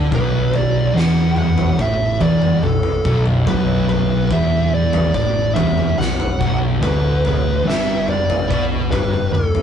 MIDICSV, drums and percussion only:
0, 0, Header, 1, 2, 480
1, 0, Start_track
1, 0, Key_signature, 2, "minor"
1, 0, Tempo, 837989
1, 68, Time_signature, 4, 2, 24, 8
1, 5512, End_track
2, 0, Start_track
2, 0, Title_t, "Drums"
2, 68, Note_on_c, 9, 36, 99
2, 70, Note_on_c, 9, 43, 88
2, 126, Note_off_c, 9, 36, 0
2, 127, Note_off_c, 9, 43, 0
2, 307, Note_on_c, 9, 43, 85
2, 364, Note_off_c, 9, 43, 0
2, 558, Note_on_c, 9, 38, 80
2, 615, Note_off_c, 9, 38, 0
2, 781, Note_on_c, 9, 47, 78
2, 838, Note_off_c, 9, 47, 0
2, 903, Note_on_c, 9, 43, 92
2, 960, Note_off_c, 9, 43, 0
2, 1026, Note_on_c, 9, 36, 96
2, 1084, Note_off_c, 9, 36, 0
2, 1264, Note_on_c, 9, 43, 88
2, 1267, Note_on_c, 9, 36, 103
2, 1321, Note_off_c, 9, 43, 0
2, 1324, Note_off_c, 9, 36, 0
2, 1384, Note_on_c, 9, 47, 83
2, 1441, Note_off_c, 9, 47, 0
2, 1506, Note_on_c, 9, 47, 75
2, 1564, Note_off_c, 9, 47, 0
2, 1622, Note_on_c, 9, 43, 80
2, 1680, Note_off_c, 9, 43, 0
2, 1748, Note_on_c, 9, 36, 111
2, 1805, Note_off_c, 9, 36, 0
2, 1865, Note_on_c, 9, 47, 76
2, 1922, Note_off_c, 9, 47, 0
2, 1988, Note_on_c, 9, 36, 109
2, 1988, Note_on_c, 9, 43, 93
2, 2045, Note_off_c, 9, 36, 0
2, 2045, Note_off_c, 9, 43, 0
2, 2230, Note_on_c, 9, 43, 82
2, 2287, Note_off_c, 9, 43, 0
2, 2467, Note_on_c, 9, 36, 112
2, 2524, Note_off_c, 9, 36, 0
2, 2825, Note_on_c, 9, 43, 94
2, 2882, Note_off_c, 9, 43, 0
2, 2946, Note_on_c, 9, 36, 97
2, 3004, Note_off_c, 9, 36, 0
2, 3185, Note_on_c, 9, 43, 93
2, 3187, Note_on_c, 9, 36, 107
2, 3243, Note_off_c, 9, 43, 0
2, 3244, Note_off_c, 9, 36, 0
2, 3308, Note_on_c, 9, 47, 72
2, 3366, Note_off_c, 9, 47, 0
2, 3427, Note_on_c, 9, 47, 70
2, 3441, Note_on_c, 9, 38, 76
2, 3484, Note_off_c, 9, 47, 0
2, 3499, Note_off_c, 9, 38, 0
2, 3550, Note_on_c, 9, 43, 83
2, 3607, Note_off_c, 9, 43, 0
2, 3670, Note_on_c, 9, 36, 105
2, 3727, Note_off_c, 9, 36, 0
2, 3910, Note_on_c, 9, 36, 117
2, 3911, Note_on_c, 9, 43, 88
2, 3968, Note_off_c, 9, 36, 0
2, 3968, Note_off_c, 9, 43, 0
2, 4152, Note_on_c, 9, 43, 83
2, 4209, Note_off_c, 9, 43, 0
2, 4408, Note_on_c, 9, 38, 82
2, 4465, Note_off_c, 9, 38, 0
2, 4630, Note_on_c, 9, 47, 73
2, 4687, Note_off_c, 9, 47, 0
2, 4753, Note_on_c, 9, 43, 97
2, 4810, Note_off_c, 9, 43, 0
2, 4872, Note_on_c, 9, 36, 101
2, 4930, Note_off_c, 9, 36, 0
2, 5112, Note_on_c, 9, 36, 109
2, 5116, Note_on_c, 9, 43, 85
2, 5169, Note_off_c, 9, 36, 0
2, 5174, Note_off_c, 9, 43, 0
2, 5233, Note_on_c, 9, 47, 78
2, 5290, Note_off_c, 9, 47, 0
2, 5355, Note_on_c, 9, 47, 82
2, 5412, Note_off_c, 9, 47, 0
2, 5469, Note_on_c, 9, 43, 80
2, 5512, Note_off_c, 9, 43, 0
2, 5512, End_track
0, 0, End_of_file